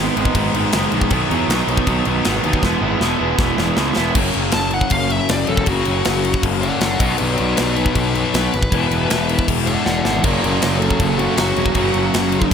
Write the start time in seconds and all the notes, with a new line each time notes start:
Already playing: G#2 D#3 G#3 B3
0.00 B3 D#4
0.16 G#1 G#2 D#3 G#3 B3 D#4, crash
0.25 kick
0.35 G#1 G#2 D#3 G#3 B3 D#4, kick, crash
0.53 G#1 G#2 D#3 G#3 B3 D#4, crash
0.73 F#1 G#2 D#3 G#3 B3 D#4, snare, crash
0.92 A#1 G#2 D#3 G#3 B3 D#4, crash
1.01 kick
1.10 B1 B2 D#3 F#3 B3 D#4, kick, crash
1.29 E2 B2 D#3 F#3 B3 D#4, crash
1.48 B1 B2 D#3 F#3 B3 D#4, snare, crash
1.68 B1 B2 D#3 F#3 B3 D#4, crash
1.77 kick
1.87 B1 B2 D#3 F#3 B3 D#4, kick, crash
2.05 B1 B2 D#3 F#3 B3 D#4, crash
2.25 G#1 B2 D#3 F#3 B3 D#4, snare, crash
2.43 D#2 B2 D#3 F#3 B3 D#4, crash
2.53 kick
2.62 E1 E2 B2 E3 G#3 B3 E4, kick, snare
2.80 G#1 E2 B2 E3 G#3 B3 E4
3.00 E1 E2 B2 E3 G#3 B3 E4, snare
3.18 E1 E2 B2 E3 G#3 B3 E4
3.37 E1 E2 B2 E3 G#3 B3 E4, kick, snare
3.56 E1 E2 B2 E3 G#3 B3 E4, snare
3.76 C#2 E2 B2 E3 G#3 B3 E4, snare
3.95 E1 E2 B2 E3 G#3 B3 E4, snare
4.12 F#1 F#2 C#3 F#3 A#3, kick, crash
4.17 C#4
4.34 F#1, crash
4.52 F#1 A5, snare, crash
4.71 F#5, crash
4.81 kick
4.90 F#1 F5, kick, crash
5.10 E5, crash
5.29 F#1 D5, snare, crash
5.47 E1 F#3 A#3 C#4 A4, crash
5.51 F#2 C#3
5.57 kick
5.66 F#1 F#2 C#3 F#4, kick, crash
5.71 F#3 A#3 C#4
5.85 F#1, crash
6.05 F#1, snare, crash
6.25 crash
6.34 kick
6.43 F#1, kick, crash
6.61 D5 F#5, crash
6.81 F#1 D5 F#5, snare, crash
6.99 B1 B2 F#3 B3 D#4 D#5 F#5, kick, crash
7.18 B4 D5, crash
7.22 B1
7.38 B1 B4 D5, crash
7.57 B1 B4 D5, snare, crash
7.75 D#4 B4, crash
7.86 kick
7.94 B1 D#4 B4, kick, crash
8.14 D#4 B4, crash
8.33 B1 B2 F#3 B3 B4, snare, crash
8.37 D#4
8.54 G#1, crash
8.63 kick
8.71 E1 E2 B2 E3 G#3 B3 E4, kick, crash
8.91 E1, crash
9.09 E1, snare, crash
9.29 crash
9.39 kick
9.48 E1, kick, crash
9.67 D5 F#5, crash
9.84 E1 D5 F#5, snare
10.04 G#1 G#3 B3 E4 D5 F#5, snare
10.09 E3
10.24 F#1 F#2 C#3 F#3 A#4 D5, kick, crash
10.28 A#3 C#4
10.42 F#1 A#4 D5, crash
10.62 F#1 A#4 D5, snare, crash
10.79 F#4 A4, crash
10.91 kick
11.00 F#1 F#4 A4, kick, crash
11.18 F#2 C#3 F#3 A#3 C#4 F#4 A4, crash
11.36 F#1 F#2 C#3 F#3 A#3 F#4, snare, crash
11.40 C#4
11.56 E1 F#2 C#3 F#3 A#3 C#4, crash
11.66 kick
11.75 F#1 F#2 C#3 F#3 A#3 C#4, kick, crash
11.94 F#1, crash
12.14 F#1, snare, crash
12.32 crash
12.42 kick